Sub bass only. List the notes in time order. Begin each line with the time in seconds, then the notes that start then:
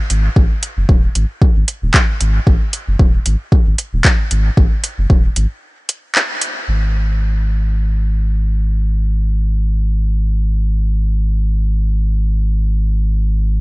0.10 G#1
0.36 G#1
0.77 F#1
0.89 D#1
1.15 G#1
1.56 G#1
1.82 D#1
2.20 G#1
2.47 G#1
2.87 F#1
2.99 D#1
3.26 G#1
3.66 G#1
3.93 D#1
4.31 G#1
4.57 G#1
4.98 F#1
5.10 D#1
5.36 G#1
6.68 G#1